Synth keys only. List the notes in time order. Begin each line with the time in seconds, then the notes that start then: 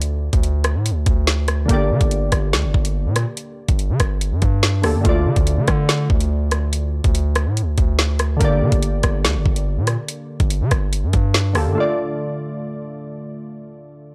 Already playing: D3 A3 F4 D5
1.65 D3 A#3
1.71 G4 D5
4.82 D3 A#3 G4 A4
5.01 D3 A3
5.06 F4 D5
8.37 D3 A#3
8.42 G4 D5
11.53 D3 A#3 G4 A4
11.72 D3 A3
11.78 F4 D5